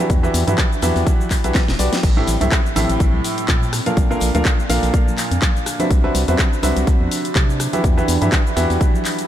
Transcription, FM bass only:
0.10 E2
0.34 E2
0.47 G2
0.82 E2
0.96 E2
1.44 B1
1.68 E1
1.79 B1
2.03 A1
2.28 A1
2.41 C2
2.76 A1
2.89 A1
3.00 A1
3.14 C2
3.49 A#2
3.97 A#1
4.21 A#1
4.35 D2
4.70 A#1
4.83 A#1
5.31 F2
5.91 C2
6.15 C2
6.28 E2
6.63 C2
6.77 C2
6.87 C2
7.01 E2
7.36 C3
7.84 E2
8.08 E2
8.22 G2
8.57 E2
8.70 E2

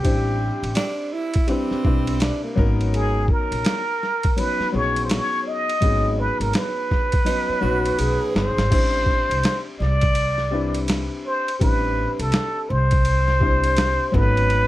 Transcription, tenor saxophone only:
0.76 D4
1.13 E4
1.49 C4
2.21 D4
2.43 A#3
7.26 D#4
7.61 F#4
7.98 G#4

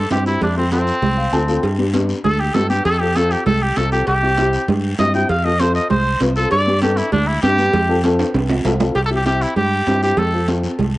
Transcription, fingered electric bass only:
0.11 G2
0.41 F2
1.02 C2
1.33 D2
1.63 G2
2.25 D2
2.55 G2
2.85 F2
3.46 C2
3.77 C2
4.07 C2
4.68 G2
4.99 G2
5.29 F2
5.91 C2
6.21 C2
6.52 G2
7.12 D2
7.43 G2
7.73 F2
8.34 C2
8.65 C2
8.95 C2
9.56 G2
9.87 G2
10.17 F2
10.79 C2

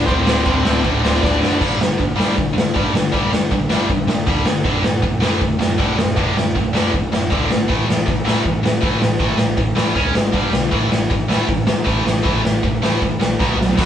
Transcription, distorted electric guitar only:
0.08 D2 A2 D3
0.25 D2 A2 D3
0.45 D2 A2 D3
0.64 D2 A2 D3
0.82 D2 A2 D3
1.02 D2 A2 D3
1.21 D2 A2 D3
1.40 D2 A2 D3
1.58 G2 D3 G3
1.80 G2 D3
1.98 G2 D3
2.16 G2 D3 G3
2.35 G2 D3
2.53 G2 D3
2.74 G2 D3 G3
2.94 G2 D3
3.12 G2 D3 G3
3.31 G2 D3
3.51 G2 D3
3.69 G2 D3 G3
3.89 G2 D3
4.08 G2 D3
4.27 G2 D3 G3
4.46 G2 D3
4.64 D2 A2 D3
4.83 D2 A2
5.02 D2 A2
5.20 D2 A2 D3
5.40 D2 A2
5.59 D2 A2
5.78 D2 A2 D3
5.97 D2 A2
6.16 D2 A2 D3
6.36 D2 A2
6.55 D2 A2
6.73 D2 A2 D3
6.92 D2 A2
7.12 D2 A2
7.30 D2 A2 D3
7.49 D2 A2
7.68 A2 E3 A3
7.88 A2 E3
8.06 A2 E3
8.25 A2 E3 A3
8.43 A2 E3
8.63 A2 E3
8.81 A2 E3 A3
9.00 A2 E3
9.20 A2 E3 A3
9.38 A2 E3
9.57 A2 E3
9.75 A2 E3 A3
9.94 C#3 G#3 C#4
10.12 C#3 G#3
10.32 G2 D3 G3
10.51 G2 D3
10.71 A2 E3 A3
10.90 A2 E3
11.10 A2 E3
11.29 A2 E3 A3
11.48 A2 E3
11.67 A2 E3
11.84 A2 E3 A3
12.05 A2 E3
12.23 A2 E3 A3
12.42 A2 E3
12.63 A2 E3
12.82 A2 E3 A3
13.02 A2 E3
13.20 A2 E3
13.39 B2 F#3 B3
13.58 B2 F#3
13.77 A2 E3 A3

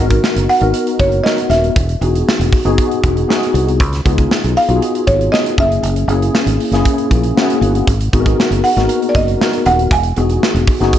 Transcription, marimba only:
0.49 F#5
1.00 C#5
1.24 D#5
1.50 E5
4.57 F5
5.07 C#5
5.32 D#5
5.60 E5
8.64 F#5
9.09 D5
9.16 D#5
9.66 F#5
9.93 G#5

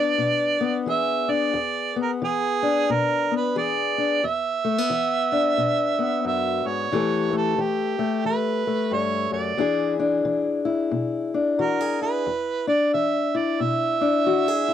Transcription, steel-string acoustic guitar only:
Already playing: E3 B3 D4
0.18 B2
0.61 B3
0.86 E3 G#4
1.29 D4
1.53 E2
1.96 B3
2.22 E3
2.63 D4
2.90 B2
3.31 B3
3.56 E3 G#4
3.98 D4
4.24 E2
4.65 A3
4.78 B3
4.90 E3
5.32 D4
5.58 B2
5.99 B3
6.25 F#2
6.66 G#2
6.91 A2 E3 A3 G4 A4
7.33 A3
7.58 E3
7.99 A3
8.25 E3
8.67 A3
8.91 G2
9.32 F#2
9.57 E2 E3 D4 E4 G#4
9.99 D4
10.25 E3
10.65 E4
10.91 B2
11.34 D4
11.59 E3 F#4
11.81 G#4
12.02 E4
12.26 E2
12.67 D4
12.94 E3
13.35 E4
13.60 B2
14.01 D4
14.26 E3 F#4
14.48 G#4
14.68 E4

